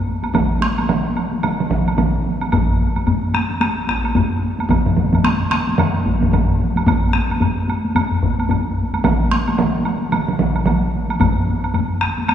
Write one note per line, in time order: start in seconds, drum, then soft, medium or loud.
0.23 taiko high medium
0.23 high woodblock soft
0.34 taiko loud
0.34 taiko mid loud
0.34 taiko high medium
0.34 high woodblock medium
0.61 taiko rim medium
0.61 taiko high medium
0.78 taiko high medium
0.78 high woodblock soft
0.89 taiko mid loud
0.89 taiko high medium
0.89 high woodblock soft
1.16 taiko high medium
1.16 high woodblock soft
1.32 taiko high medium
1.43 taiko mid medium
1.43 taiko high medium
1.43 high woodblock medium
1.60 taiko mid medium
1.70 taiko medium
1.70 taiko mid medium
1.70 taiko high medium
1.87 taiko high medium
1.87 high woodblock soft
1.98 taiko medium
1.98 taiko mid medium
1.98 taiko high medium
1.98 high woodblock soft
2.41 taiko high medium
2.41 high woodblock soft
2.52 taiko loud
2.52 taiko low-mid loud
2.52 taiko high medium
2.52 high woodblock soft
2.80 taiko high medium
2.96 taiko high medium
2.96 high woodblock soft
3.07 taiko low-mid medium
3.07 taiko high medium
3.07 high woodblock soft
3.34 taiko rim medium
3.34 taiko high medium
3.34 high woodblock soft
3.50 taiko high medium
3.61 taiko rim medium
3.61 taiko high medium
3.61 high woodblock medium
3.87 taiko rim medium
3.87 taiko medium
3.87 taiko high medium
4.04 taiko high medium
4.04 high woodblock soft
4.15 taiko medium
4.15 taiko low-mid medium
4.15 taiko high medium
4.15 high woodblock soft
4.59 taiko high medium
4.59 high woodblock soft
4.69 taiko loud
4.69 taiko low-mid medium
4.69 taiko mid medium
4.69 taiko high medium
4.69 high woodblock soft
4.86 taiko low-mid medium
4.86 taiko mid medium
4.96 taiko low-mid medium
4.96 taiko mid medium
4.96 taiko high medium
5.13 taiko low-mid medium
5.13 taiko mid medium
5.13 taiko high medium
5.13 high woodblock soft
5.24 taiko rim medium
5.24 taiko high medium
5.24 high woodblock soft
5.50 taiko rim medium
5.50 taiko high medium
5.50 high woodblock soft
5.67 taiko high medium
5.78 taiko low-mid medium
5.78 taiko mid loud
5.78 taiko high medium
5.78 high woodblock medium
6.05 taiko medium
6.05 taiko high medium
6.21 taiko low-mid medium
6.21 taiko mid medium
6.21 taiko high medium
6.32 taiko medium
6.32 taiko low-mid medium
6.32 taiko mid medium
6.32 taiko high medium
6.32 high woodblock soft
6.59 taiko high medium
6.76 taiko high medium
6.76 high woodblock soft
6.86 taiko loud
6.86 taiko low-mid medium
6.86 taiko high medium
6.86 high woodblock medium
7.13 taiko rim medium
7.13 taiko high medium
7.30 taiko high medium
7.30 high woodblock soft
7.40 taiko low-mid medium
7.40 taiko high medium
7.40 high woodblock soft
7.68 taiko high medium
7.68 high woodblock soft
7.84 taiko high medium
7.95 taiko low-mid medium
7.95 taiko high medium
7.95 high woodblock medium
8.11 taiko low-mid medium
8.23 taiko medium
8.23 taiko low-mid loud
8.39 taiko high medium
8.39 high woodblock soft
8.49 taiko medium
8.49 taiko low-mid medium
8.49 taiko high medium
8.49 high woodblock soft
8.94 taiko high medium
8.94 high woodblock soft
9.04 taiko loud
9.04 taiko mid loud
9.04 taiko high medium
9.04 high woodblock soft
9.31 taiko rim medium
9.31 taiko high medium
9.48 taiko high medium
9.48 high woodblock soft
9.58 taiko mid loud
9.58 taiko high medium
9.58 high woodblock soft
9.85 taiko high medium
9.85 high woodblock soft
10.02 taiko high medium
10.12 taiko mid medium
10.12 taiko high medium
10.12 high woodblock medium
10.28 taiko mid medium
10.39 taiko medium
10.39 taiko mid medium
10.39 taiko high medium
10.56 taiko high medium
10.56 high woodblock soft
10.66 taiko medium
10.66 taiko mid medium
10.66 taiko high medium
10.66 high woodblock soft
11.09 taiko high medium
11.09 high woodblock soft
11.20 taiko loud
11.20 taiko low-mid loud
11.20 taiko high medium
11.20 high woodblock medium
11.47 taiko high medium
11.64 high woodblock soft
11.74 taiko low-mid medium
11.74 taiko high medium
11.74 high woodblock soft
12.01 taiko rim medium
12.01 taiko high soft
12.01 high woodblock soft
12.18 taiko high soft
12.28 taiko rim medium
12.28 taiko high medium
12.28 high woodblock medium